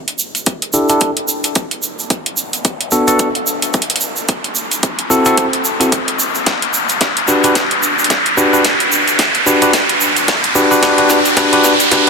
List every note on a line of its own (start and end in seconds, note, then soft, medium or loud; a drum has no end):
0.00 riser medium
0.08 closed hi-hat soft
0.19 shaker medium
0.35 closed hi-hat soft
0.35 shaker soft
0.46 kick medium
0.46 closed hi-hat medium
0.46 shaker soft
0.62 closed hi-hat soft
0.73 0.87 D4 medium
0.73 0.87 E4 medium
0.73 0.87 G4 medium
0.73 0.87 A4 medium
0.73 shaker medium
0.89 1.10 D4 medium
0.89 1.10 E4 medium
0.89 1.10 G4 medium
0.89 1.10 A4 medium
0.89 closed hi-hat medium
0.89 shaker medium
1.00 kick medium
1.00 closed hi-hat medium
1.00 shaker soft
1.17 closed hi-hat soft
1.28 shaker loud
1.44 closed hi-hat medium
1.44 shaker soft
1.55 kick medium
1.55 closed hi-hat medium
1.55 shaker soft
1.71 closed hi-hat soft
1.83 shaker medium
1.99 shaker medium
2.10 kick medium
2.10 closed hi-hat medium
2.10 shaker soft
2.26 closed hi-hat soft
2.37 shaker medium
2.53 closed hi-hat soft
2.53 shaker soft
2.65 kick medium
2.65 closed hi-hat medium
2.65 shaker soft
2.81 closed hi-hat soft
2.91 3.05 B3 medium
2.91 3.05 D4 medium
2.91 3.06 F#4 medium
2.91 3.05 A4 medium
2.91 shaker medium
3.08 3.28 B3 medium
3.08 3.28 D4 medium
3.08 3.28 F#4 medium
3.08 3.28 A4 loud
3.08 closed hi-hat medium
3.08 shaker medium
3.19 kick medium
3.19 closed hi-hat medium
3.19 shaker soft
3.35 closed hi-hat soft
3.47 shaker loud
3.62 closed hi-hat medium
3.62 shaker medium
3.73 kick loud
3.73 closed hi-hat soft
3.73 shaker soft
3.82 closed hi-hat soft
3.90 closed hi-hat medium
3.96 closed hi-hat medium
4.00 shaker medium
4.16 shaker medium
4.28 kick medium
4.28 closed hi-hat medium
4.28 shaker soft
4.44 closed hi-hat soft
4.55 shaker medium
4.71 closed hi-hat soft
4.71 shaker medium
4.83 kick loud
4.83 closed hi-hat medium
4.83 shaker soft
4.99 closed hi-hat soft
5.10 5.24 C4 medium
5.10 5.24 E4 medium
5.10 5.24 F#4 medium
5.10 5.24 A4 loud
5.10 shaker medium
5.25 5.46 C4 medium
5.25 5.46 E4 medium
5.25 5.46 F#4 medium
5.25 5.46 A4 loud
5.25 closed hi-hat medium
5.25 shaker medium
5.37 kick medium
5.37 closed hi-hat medium
5.37 shaker soft
5.53 closed hi-hat soft
5.65 shaker medium
5.80 5.91 C4 medium
5.80 5.91 E4 medium
5.80 5.91 F#4 medium
5.80 5.91 A4 medium
5.80 closed hi-hat medium
5.80 shaker soft
5.92 kick medium
5.92 closed hi-hat medium
5.92 shaker soft
6.08 closed hi-hat soft
6.19 shaker medium
6.35 shaker soft
6.46 kick loud
6.46 snare soft
6.46 closed hi-hat medium
6.46 shaker soft
6.62 closed hi-hat soft
6.74 shaker medium
6.89 closed hi-hat soft
6.89 shaker soft
7.01 kick loud
7.01 snare medium
7.01 closed hi-hat medium
7.01 shaker soft
7.17 closed hi-hat soft
7.28 7.42 D4 medium
7.28 7.42 F#4 medium
7.28 7.42 G4 medium
7.28 7.42 B4 medium
7.28 shaker medium
7.44 7.54 D4 medium
7.44 7.54 F#4 medium
7.44 7.54 G4 medium
7.44 7.54 B4 medium
7.44 closed hi-hat soft
7.44 shaker medium
7.55 kick medium
7.55 snare medium
7.55 closed hi-hat medium
7.55 shaker soft
7.71 closed hi-hat soft
7.83 shaker loud
7.99 shaker soft
8.04 closed hi-hat medium
8.10 kick loud
8.10 snare medium
8.10 closed hi-hat medium
8.10 shaker soft
8.26 closed hi-hat soft
8.37 8.51 D4 medium
8.37 8.51 F#4 medium
8.37 8.51 G4 medium
8.37 8.51 B4 medium
8.37 shaker medium
8.53 8.63 D4 medium
8.53 8.63 F#4 medium
8.53 8.63 G4 medium
8.53 8.63 B4 medium
8.53 shaker soft
8.65 kick loud
8.65 snare medium
8.65 closed hi-hat medium
8.65 shaker soft
8.80 closed hi-hat soft
8.92 shaker medium
9.08 closed hi-hat soft
9.08 shaker medium
9.19 kick loud
9.19 snare medium
9.19 closed hi-hat medium
9.19 shaker soft
9.35 closed hi-hat soft
9.46 9.60 D4 medium
9.46 9.60 F#4 medium
9.46 9.60 G4 medium
9.46 9.60 B4 medium
9.46 shaker medium
9.62 9.72 D4 medium
9.62 9.72 F#4 medium
9.62 9.72 G4 medium
9.62 9.72 B4 medium
9.62 closed hi-hat soft
9.62 shaker medium
9.73 kick loud
9.73 snare medium
9.73 closed hi-hat medium
9.73 shaker soft
9.89 closed hi-hat soft
10.01 shaker medium
10.16 closed hi-hat medium
10.16 shaker medium
10.28 kick loud
10.28 snare medium
10.28 closed hi-hat medium
10.28 shaker soft
10.44 closed hi-hat soft
10.55 10.69 D4 medium
10.55 10.69 F#4 medium
10.55 10.69 G4 medium
10.55 10.69 B4 loud
10.55 shaker medium
10.71 10.81 D4 medium
10.71 10.81 F#4 medium
10.71 10.81 G4 medium
10.71 10.81 B4 medium
10.71 shaker medium
10.83 10.96 D4 medium
10.83 10.96 F#4 medium
10.83 10.96 G4 medium
10.83 10.96 B4 loud
10.83 kick loud
10.83 snare medium
10.83 closed hi-hat medium
10.83 shaker soft
10.98 11.19 D4 medium
10.98 11.19 F#4 medium
10.98 11.19 G4 medium
10.98 11.19 B4 medium
10.98 closed hi-hat soft
11.09 snare medium
11.09 shaker medium
11.25 closed hi-hat soft
11.25 shaker medium
11.37 11.51 D4 medium
11.37 11.51 F#4 medium
11.37 11.51 G4 medium
11.37 11.51 B4 loud
11.37 kick loud
11.37 snare medium
11.37 closed hi-hat medium
11.37 shaker soft
11.53 11.73 D4 medium
11.53 11.73 F#4 medium
11.53 11.73 G4 medium
11.53 11.73 B4 loud
11.53 closed hi-hat soft
11.64 snare medium
11.64 shaker medium
11.80 closed hi-hat medium
11.80 shaker medium
11.92 12.05 D4 medium
11.92 12.05 F#4 medium
11.92 12.05 G4 medium
11.92 12.05 B4 loud
11.92 kick loud
11.92 snare medium
11.92 closed hi-hat medium
11.92 shaker soft